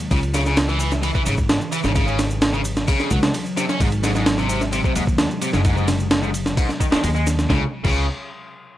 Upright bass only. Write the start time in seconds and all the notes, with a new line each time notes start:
0.11 C#2
1.26 G#1
1.84 G#1
3.11 C#2
3.80 G#1
4.96 D#2
5.54 F#1
6.92 muted upright bass stroke
7.04 D#2
7.50 C#2
7.85 C#2